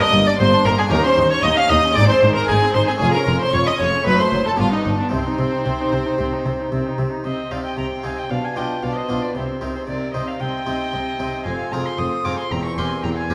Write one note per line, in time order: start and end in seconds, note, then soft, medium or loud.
0.00 0.10 G2 medium
0.00 0.86 A#3 medium
0.00 0.13 D4 medium
0.00 0.87 D4 medium
0.00 0.88 G4 medium
0.00 0.26 D#5 loud
0.00 0.29 D#5 loud
0.00 0.26 D#6 loud
0.12 0.21 G1 medium
0.12 0.21 G2 medium
0.12 0.36 G2 medium
0.12 0.26 A#3 medium
0.26 0.39 D4 medium
0.26 0.32 D5 medium
0.26 0.39 D5 medium
0.26 0.39 D6 loud
0.38 0.47 G1 loud
0.38 0.47 G2 medium
0.38 0.63 G2 medium
0.38 0.51 A#3 medium
0.38 0.65 C5 loud
0.38 0.48 C5 loud
0.38 0.64 C6 loud
0.52 0.65 D4 medium
0.65 0.74 G1 medium
0.65 0.73 G2 medium
0.65 0.89 G2 medium
0.65 0.78 A#3 medium
0.65 0.70 A#4 loud
0.65 0.71 A#4 medium
0.65 0.78 A#5 loud
0.78 0.91 D4 medium
0.78 0.84 G#4 medium
0.78 0.92 G#5 loud
0.87 1.91 A#3 medium
0.87 1.91 C#4 medium
0.87 1.92 G4 medium
0.91 0.99 D#2 loud
0.91 1.15 D#2 medium
0.91 1.00 D#2 loud
0.91 1.03 D#4 medium
0.91 1.04 A#4 loud
0.91 0.97 A#4 loud
0.91 1.04 A#5 loud
1.03 1.18 C#4 medium
1.03 1.30 C5 loud
1.03 1.33 C5 loud
1.03 1.30 C6 loud
1.17 1.41 D#2 medium
1.17 1.26 D#2 medium
1.17 1.31 D#4 medium
1.30 1.44 C#4 medium
1.30 1.44 C#5 loud
1.30 1.45 C#5 medium
1.30 1.44 C#6 loud
1.43 1.51 D#2 loud
1.43 1.52 D#2 medium
1.43 1.68 D#2 medium
1.43 1.56 D#4 medium
1.43 1.59 D#5 loud
1.43 1.57 D#5 loud
1.43 1.57 D#6 loud
1.56 1.70 C#4 medium
1.56 1.70 F5 loud
1.56 1.71 F5 loud
1.56 1.70 F6 loud
1.69 1.78 D#2 medium
1.69 1.94 D#2 medium
1.69 1.83 D#4 medium
1.69 1.97 D#5 loud
1.69 1.96 D#5 loud
1.69 1.96 D#6 loud
1.83 1.96 C#4 medium
1.92 2.94 G#3 medium
1.92 2.97 C4 medium
1.92 2.08 D#4 medium
1.92 2.97 G#4 medium
1.92 2.09 D5 loud
1.92 2.08 D5 loud
1.92 2.09 D6 loud
1.96 2.04 G#1 loud
1.96 2.04 G#2 medium
1.96 2.20 G#2 medium
2.09 2.22 C4 medium
2.09 2.35 C5 loud
2.09 2.17 C6 loud
2.22 2.30 G#1 medium
2.22 2.46 G#2 medium
2.22 2.31 G#2 medium
2.22 2.36 D#4 medium
2.35 2.48 C4 medium
2.35 2.48 A#4 medium
2.35 2.50 A#4 medium
2.35 2.49 A#5 loud
2.47 2.57 G#1 medium
2.47 2.72 G#2 medium
2.47 2.57 G#2 medium
2.47 2.61 D#4 medium
2.47 2.74 G#4 loud
2.47 2.76 G#4 medium
2.47 2.74 G#5 loud
2.62 2.75 C4 medium
2.73 2.83 G#1 medium
2.73 2.98 G#2 medium
2.73 2.83 G#2 medium
2.73 2.88 D#4 medium
2.73 2.87 C5 loud
2.73 2.90 C5 medium
2.73 2.87 C6 loud
2.86 3.01 C4 medium
2.86 2.92 G#4 medium
2.86 3.00 G#4 medium
2.86 2.98 G#5 medium
2.95 4.00 G#3 medium
2.95 4.01 C#4 medium
2.95 4.02 G#4 medium
2.95 3.13 G#5 loud
3.00 3.09 F1 medium
3.00 3.24 F2 medium
3.00 3.10 F2 medium
3.00 3.13 F4 medium
3.00 3.14 G#4 loud
3.13 3.28 C#4 medium
3.13 3.41 A#4 medium
3.13 3.40 A#4 medium
3.13 3.40 A#5 loud
3.27 3.36 F1 medium
3.27 3.51 F2 medium
3.27 3.35 F2 medium
3.27 3.41 F4 medium
3.40 3.54 C#4 medium
3.40 3.54 C5 medium
3.40 3.53 C5 medium
3.40 3.54 C6 loud
3.53 3.62 F1 medium
3.53 3.77 F2 medium
3.53 3.62 F2 medium
3.53 3.66 F4 medium
3.53 3.67 C#5 loud
3.53 3.59 C#5 loud
3.53 3.67 C#6 loud
3.66 3.80 C#4 medium
3.66 3.79 D#5 medium
3.66 3.72 D#5 medium
3.66 3.80 D#6 loud
3.79 3.88 F1 medium
3.79 4.03 F2 medium
3.79 3.88 F2 medium
3.79 3.93 F4 medium
3.79 4.05 C#5 medium
3.79 3.88 C#5 loud
3.79 4.06 C#6 loud
3.93 4.06 C#4 medium
4.02 4.14 F#2 medium
4.02 4.55 A3 medium
4.02 4.56 C4 medium
4.02 4.57 D#4 medium
4.06 4.14 F#1 medium
4.06 4.30 F#2 medium
4.06 4.19 F#3 medium
4.06 4.19 B4 loud
4.06 4.19 B5 loud
4.19 4.33 A3 medium
4.19 4.48 C5 medium
4.19 4.46 C5 medium
4.19 4.46 C6 loud
4.32 4.41 F#1 medium
4.32 4.40 F#2 medium
4.32 4.56 F#2 medium
4.32 4.46 F#3 medium
4.46 4.59 A3 medium
4.46 4.61 A4 medium
4.46 4.59 A4 medium
4.46 4.51 A5 loud
4.56 4.67 G1 medium
4.56 4.67 G2 medium
4.56 4.83 G2 medium
4.56 5.09 B3 medium
4.56 5.10 D4 medium
4.56 4.72 D4 medium
4.56 4.72 F4 medium
4.56 4.72 F5 loud
4.60 4.65 F4 medium
4.72 4.86 B3 medium
4.72 4.98 D#4 medium
4.72 4.99 D#4 medium
4.72 4.99 D#5 medium
4.85 4.94 G1 medium
4.85 4.93 G2 medium
4.85 5.09 G2 medium
4.85 4.99 D4 medium
4.99 5.13 B3 medium
4.99 5.12 D4 medium
4.99 5.05 D4 medium
4.99 5.12 D5 medium
5.09 5.21 C2 medium
5.09 5.19 C3 medium
5.09 5.36 C3 medium
5.09 7.20 C4 medium
5.09 5.25 C4 medium
5.09 6.95 C4 medium
5.09 7.20 D#4 medium
5.09 6.95 C5 loud
5.26 5.39 D#4 medium
5.39 5.48 C2 medium
5.39 5.63 C3 medium
5.39 5.47 C3 medium
5.39 5.53 C4 medium
5.53 5.66 D#4 medium
5.66 5.74 C2 medium
5.66 5.90 C3 medium
5.66 5.74 C3 medium
5.66 5.78 C4 medium
5.80 5.93 D#4 medium
5.92 6.01 C2 medium
5.92 6.00 C3 medium
5.92 6.16 C3 medium
5.92 6.06 C4 medium
6.05 6.19 D#4 medium
6.18 6.27 C2 medium
6.18 6.42 C3 medium
6.18 6.27 C3 medium
6.18 6.31 C4 medium
6.32 6.46 D#4 medium
6.45 6.54 C2 medium
6.45 6.53 C3 medium
6.45 6.70 C3 medium
6.45 6.59 C4 medium
6.59 6.72 D#4 medium
6.72 6.80 C2 medium
6.72 6.80 C3 medium
6.72 6.96 C3 medium
6.72 6.85 C4 medium
6.86 6.99 D#4 medium
6.98 7.07 C2 medium
6.98 7.06 C3 medium
6.98 7.22 C3 medium
6.98 7.12 C4 medium
7.12 7.25 D#4 medium
7.24 7.33 C2 soft
7.24 7.49 C3 soft
7.24 7.33 C3 soft
7.24 7.51 C4 soft
7.24 7.50 G4 soft
7.24 7.50 C5 soft
7.24 7.52 D#5 medium
7.51 7.60 C2 soft
7.51 7.75 C3 soft
7.51 7.60 C3 soft
7.51 7.89 C4 soft
7.51 7.78 C4 soft
7.51 7.90 D#4 soft
7.51 7.77 G4 soft
7.51 7.65 D5 soft
7.51 7.65 F5 medium
7.65 7.78 D#5 soft
7.65 7.77 G5 medium
7.77 7.86 C2 soft
7.77 8.01 C3 soft
7.77 7.86 C3 soft
7.77 8.04 C4 soft
7.77 8.03 G4 soft
7.77 8.04 G5 medium
7.77 7.86 A#5 medium
8.03 8.13 C2 soft
8.03 8.28 C3 soft
8.03 8.13 C3 soft
8.03 8.23 C4 soft
8.03 8.31 C4 soft
8.03 8.23 D#4 soft
8.03 8.30 G4 soft
8.03 8.17 F5 medium
8.03 8.20 G#5 medium
8.18 8.31 D#5 soft
8.18 8.32 G5 medium
8.30 8.39 B1 soft
8.30 8.54 B2 soft
8.30 8.39 B2 medium
8.30 8.56 D4 soft
8.30 8.56 F4 soft
8.30 8.35 D5 medium
8.30 8.46 F5 medium
8.44 8.57 F5 medium
8.44 8.59 G#5 medium
8.56 8.65 B1 soft
8.56 8.80 B2 soft
8.56 8.65 B2 soft
8.56 8.95 D4 soft
8.56 8.82 D4 soft
8.56 8.95 F4 soft
8.56 8.83 F4 soft
8.56 8.83 D#5 soft
8.56 8.85 G5 medium
8.83 8.92 B1 soft
8.83 9.07 B2 soft
8.83 8.92 B2 soft
8.83 9.08 D4 soft
8.83 9.09 F4 soft
8.83 8.96 D5 medium
8.83 8.95 F5 medium
8.96 9.23 C5 medium
8.96 9.24 D#5 medium
9.09 9.18 B1 soft
9.09 9.33 B2 soft
9.09 9.17 B2 soft
9.09 9.28 D4 soft
9.09 9.35 D4 soft
9.09 9.29 F4 soft
9.09 9.36 F4 soft
9.23 9.36 B4 soft
9.23 9.36 D5 medium
9.35 9.44 C2 medium
9.35 9.59 C3 soft
9.35 9.44 C3 medium
9.35 9.62 C4 soft
9.35 9.61 D#4 soft
9.35 9.45 G4 soft
9.35 9.64 C5 medium
9.61 9.71 C2 soft
9.61 9.85 C3 soft
9.61 9.70 C3 soft
9.61 9.99 C4 soft
9.61 9.88 C4 soft
9.61 10.00 D#4 soft
9.61 9.87 D#4 soft
9.61 9.68 G4 soft
9.61 9.75 A#4 medium
9.76 9.82 G#4 soft
9.76 9.81 C5 medium
9.87 9.97 C2 soft
9.87 10.12 C3 soft
9.87 9.96 C3 medium
9.87 10.15 C4 soft
9.87 10.13 D#4 soft
9.87 10.14 A#4 medium
9.87 10.13 D5 medium
10.14 10.23 C2 soft
10.14 10.38 C3 soft
10.14 10.23 C3 soft
10.14 10.34 C4 soft
10.14 10.41 C4 soft
10.14 10.39 D#4 soft
10.14 10.34 D#4 soft
10.14 10.28 C5 medium
10.14 10.29 D#5 medium
10.27 10.41 D5 soft
10.27 10.42 F5 medium
10.40 10.49 C2 soft
10.40 10.64 C3 soft
10.40 10.49 C3 soft
10.40 10.67 C4 soft
10.40 10.67 D#4 soft
10.40 11.43 D#5 medium
10.40 11.45 G5 medium
10.66 10.76 C2 soft
10.66 10.74 C3 soft
10.66 10.91 C3 soft
10.66 11.05 C4 soft
10.66 10.93 C4 soft
10.66 11.05 D#4 soft
10.66 10.93 D#4 soft
10.93 11.02 C2 soft
10.93 11.01 C3 soft
10.93 11.17 C3 soft
10.93 11.18 C4 soft
10.93 11.19 D#4 soft
11.19 11.28 C2 soft
11.19 11.27 C3 soft
11.19 11.43 C3 soft
11.19 11.45 C4 soft
11.19 11.38 C4 soft
11.19 11.39 D#4 soft
11.19 11.46 D#4 soft
11.45 11.54 F1 medium
11.45 11.53 F2 medium
11.45 11.70 F2 soft
11.45 11.71 C4 soft
11.45 11.72 F4 soft
11.45 11.72 F5 medium
11.45 11.74 G#5 medium
11.71 11.81 F1 soft
11.71 11.80 F2 soft
11.71 11.96 F2 soft
11.71 11.97 C4 soft
11.71 12.11 C4 soft
11.71 11.99 F4 soft
11.71 12.11 F4 soft
11.71 12.11 G#4 soft
11.71 11.85 G5 medium
11.71 11.87 A#5 medium
11.84 11.90 G#5 medium
11.84 12.00 C6 medium
11.97 12.07 F1 medium
11.97 12.06 F2 medium
11.97 12.22 F2 soft
11.97 12.23 C4 soft
11.97 12.24 F4 soft
11.97 12.05 C6 medium
11.97 12.26 D#6 medium
12.25 12.33 F1 soft
12.25 12.49 F2 soft
12.25 12.33 F2 soft
12.25 12.50 C4 soft
12.25 12.44 C4 soft
12.25 12.44 F4 soft
12.25 12.51 F4 soft
12.25 12.44 G#4 soft
12.25 12.38 A#5 medium
12.25 12.38 D6 medium
12.38 12.43 G#5 medium
12.38 12.53 C6 medium
12.51 12.59 E1 medium
12.51 12.59 E2 medium
12.51 12.75 E2 soft
12.51 12.76 C4 soft
12.51 12.77 A#4 soft
12.51 12.64 G5 medium
12.51 12.65 A#5 medium
12.64 12.77 A#5 medium
12.64 12.80 C#6 medium
12.77 12.86 E1 medium
12.77 12.85 E2 medium
12.77 13.01 E2 soft
12.77 13.02 C4 soft
12.77 13.16 C4 soft
12.77 13.16 G4 soft
12.77 13.03 A#4 soft
12.77 13.16 A#4 soft
12.77 13.03 G#5 medium
12.77 13.03 C6 medium
13.03 13.12 E1 medium
13.03 13.12 E2 soft
13.03 13.27 E2 soft
13.03 13.29 C4 soft
13.03 13.29 A#4 soft
13.03 13.17 G5 medium
13.03 13.09 A#5 medium
13.16 13.34 F5 medium
13.16 13.34 G#5 medium
13.29 13.34 E1 soft
13.29 13.34 E2 medium
13.29 13.34 E2 soft
13.29 13.34 C4 soft
13.29 13.34 G4 soft
13.29 13.34 A#4 soft